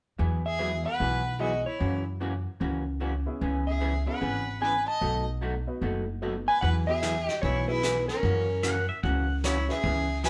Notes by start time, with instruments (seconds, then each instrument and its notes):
0.18 upright bass E2, hollow-body jazz guitar E3 F#3 B3 E4 G#4
0.46 fiddle G#4, electric slide guitar E5
0.59 hollow-body jazz guitar E3 F#3 B3 E4 G#4, upright piano G#3 B3 E4 F#4
0.86 fiddle B4, electric slide guitar F#5
1.00 upright bass B1, hollow-body jazz guitar E3 F#3 B3 E4 G#4
1.39 hollow-body jazz guitar E3 F#3 B3 E4 G#4, upright piano G#3 B3 E4 G#4, fiddle F#4, electric slide guitar D#5
1.66 fiddle E4, electric slide guitar C#5
1.79 upright bass F#2, hollow-body jazz guitar C#3 E3 A#3 C#4 F#4
2.20 hollow-body jazz guitar C#3 E3 A#3 C#4 F#4
2.60 upright bass C#2, hollow-body jazz guitar C#3 E3 A#3 C#4 F#4
3.00 hollow-body jazz guitar C#3 E3 A#3 C#4 F#4
3.26 upright piano B3 C#4 E4 G#4
3.41 upright bass C#2, hollow-body jazz guitar C#3 E3 B3 C#4 G#4
3.67 fiddle G#4, electric slide guitar E5
3.80 hollow-body jazz guitar C#3 E3 B3 C#4 G#4
4.06 upright piano B3 C#4 E4 G#4, fiddle B4, electric slide guitar F#5
4.21 upright bass G#1, hollow-body jazz guitar C#3 E3 B3 C#4 G#4
4.61 hollow-body jazz guitar C#3 E3 B3 C#4 G#4, fiddle B4, electric slide guitar G#5
4.88 fiddle D#5, electric slide guitar A5
5.01 upright bass B1, hollow-body jazz guitar B2 F#3 A3 D#4 F#4, upright piano B3 D#4 F#4 A4
5.41 hollow-body jazz guitar B2 F#3 A3 D#4 F#4
5.67 upright piano B3 D#4 F#4 B4
5.81 upright bass F#1, hollow-body jazz guitar B2 F#3 A3 D#4 F#4
6.21 hollow-body jazz guitar B2 F#3 A3 D#4 F#4, upright piano B3 D#4 F#4 A4
6.48 fiddle B4, electric slide guitar G#5
6.61 upright bass E2, hollow-body jazz guitar E3 F#3 B3 E4 G#4, fiddle B4, electric slide guitar F#5, brush sweep, kick
6.87 upright piano B3 E4 F#4 G#4, fiddle G#4, electric slide guitar E5
7.02 hollow-body jazz guitar E3 F#3 B3 E4 G#4, snare, hi-hat pedal
7.25 fiddle G4, electric slide guitar D#5, snare
7.42 upright bass B1, hollow-body jazz guitar E3 F#3 B3 E4 G#4, fiddle E4, electric slide guitar C#5, brush sweep, kick
7.68 upright piano B3 E4 F#4 G#4, fiddle E4, electric slide guitar B4
7.83 hollow-body jazz guitar E3 F#3 B3 E4 G#4, snare, hi-hat pedal
8.08 fiddle C#4, electric slide guitar A#4, snare
8.23 upright bass F#2, hollow-body jazz guitar C#3 E3 A#3 C#4 F#4, brush sweep, kick
8.63 hollow-body jazz guitar C#3 E3 A#3 C#4 F#4, pedal steel guitar F#5, snare, hi-hat pedal
8.89 pedal steel guitar E5
9.03 upright bass C#2, hollow-body jazz guitar C#3 E3 A#3 C#4 F#4, pedal steel guitar F#5, brush sweep, kick
9.44 hollow-body jazz guitar C#3 E3 A#3 C#4 F#4, fiddle E4, electric slide guitar C#5, snare, hi-hat pedal
9.68 upright piano C#4 E4 G#4 B4, fiddle G#4, electric slide guitar E5, snare
9.84 upright bass C#2, hollow-body jazz guitar C#3 E3 B3 C#4 G#4, brush sweep, kick
10.24 hollow-body jazz guitar C#3 E3 B3 C#4 G#4, upright piano C#4 E4 G#4 B4, fiddle B4, electric slide guitar G#5, snare, hi-hat pedal